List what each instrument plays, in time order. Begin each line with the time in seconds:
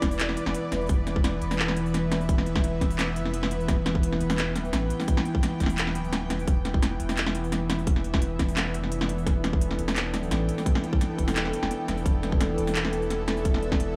Already playing: synth drone E3 B3 B4 D5
0.02 sub bass E1, kick, snare, closed hi-hat
0.11 open hi-hat
0.19 clap, closed hi-hat
0.29 snare
0.37 closed hi-hat
0.46 sub bass E1, snare
0.55 closed hi-hat
0.72 sub bass E1, snare, closed hi-hat
0.81 open hi-hat
0.87 sub bass E1, kick, closed hi-hat, open hi-hat
0.93 open hi-hat
1.07 snare, closed hi-hat
1.16 kick
1.24 synth drone E5, snare, closed hi-hat
1.42 sub bass E1, closed hi-hat
1.51 snare, open hi-hat
1.59 clap
1.68 snare
1.77 closed hi-hat
1.86 open hi-hat
1.94 snare, closed hi-hat
2.12 snare, closed hi-hat
2.21 open hi-hat
2.29 kick, closed hi-hat
2.38 snare
2.46 closed hi-hat
2.56 kick, snare
2.64 closed hi-hat
2.81 sub bass E1, kick, snare, closed hi-hat
2.91 open hi-hat
2.99 clap, snare, closed hi-hat
3.16 sub bass F1, closed hi-hat
3.25 snare
3.34 closed hi-hat
3.43 snare
3.51 sub bass E1, closed hi-hat
3.60 open hi-hat
3.68 kick, snare, closed hi-hat
3.86 snare, closed hi-hat
3.95 kick
4.03 synth drone G5, closed hi-hat
4.13 snare
4.21 sub bass E1, closed hi-hat
4.30 snare, open hi-hat
4.38 clap, closed hi-hat
4.56 sub bass D1, snare, closed hi-hat
4.65 open hi-hat
4.73 sub bass A1, snare, closed hi-hat
4.90 closed hi-hat
5.00 snare, open hi-hat
5.08 kick, closed hi-hat
5.17 snare
5.25 closed hi-hat
5.35 kick
5.43 snare, closed hi-hat
5.60 sub bass E1, kick, snare, closed hi-hat
5.63 snare
5.66 snare, open hi-hat
5.78 clap, closed hi-hat
5.87 snare
5.95 sub bass D1, closed hi-hat
6.04 open hi-hat
6.13 snare, closed hi-hat
6.30 sub bass F1, snare, closed hi-hat
6.39 sub bass D1, open hi-hat
6.48 sub bass E1, synth drone D4, kick, closed hi-hat
6.65 snare, closed hi-hat
6.74 kick
6.82 synth drone E5, snare, closed hi-hat
7.00 sub bass E1, closed hi-hat
7.09 snare, open hi-hat
7.17 clap, closed hi-hat
7.26 snare
7.35 closed hi-hat
7.44 open hi-hat
7.52 snare, closed hi-hat
7.70 snare, closed hi-hat
7.79 open hi-hat
7.87 kick, closed hi-hat
7.96 snare
8.04 closed hi-hat
8.14 kick, snare
8.22 closed hi-hat
8.39 sub bass E1, kick, snare, closed hi-hat
8.49 open hi-hat
8.56 synth drone A4, clap, snare, closed hi-hat
8.74 sub bass F1, closed hi-hat
8.84 snare
8.92 closed hi-hat
9.01 snare
9.09 sub bass E1, closed hi-hat
9.18 open hi-hat
9.27 kick, snare, closed hi-hat
9.44 snare, closed hi-hat
9.53 kick
9.61 synth drone G5, closed hi-hat
9.71 snare
9.79 sub bass E1, closed hi-hat
9.88 snare, open hi-hat
9.96 clap, closed hi-hat
10.14 sub bass D1, snare, closed hi-hat
10.23 open hi-hat
10.31 sub bass A1, snare, closed hi-hat
10.49 closed hi-hat
10.58 snare, open hi-hat
10.66 kick, closed hi-hat
10.75 snare
10.84 closed hi-hat
10.93 kick
11.01 snare, closed hi-hat
11.18 sub bass E1, kick, closed hi-hat
11.28 snare, open hi-hat
11.36 clap, closed hi-hat
11.45 snare
11.53 closed hi-hat
11.62 sub bass E1, snare
11.71 closed hi-hat
11.88 sub bass E1, snare, closed hi-hat
11.97 open hi-hat
12.06 sub bass E1, kick, closed hi-hat
12.23 snare, closed hi-hat
12.32 kick
12.41 synth drone E5, snare, closed hi-hat
12.58 sub bass E1, closed hi-hat
12.67 snare, open hi-hat
12.75 clap, closed hi-hat
12.85 snare
12.93 closed hi-hat
13.02 open hi-hat
13.10 snare, closed hi-hat
13.28 snare, closed hi-hat
13.37 open hi-hat
13.45 kick, closed hi-hat
13.54 snare
13.63 closed hi-hat
13.72 kick, snare
13.80 closed hi-hat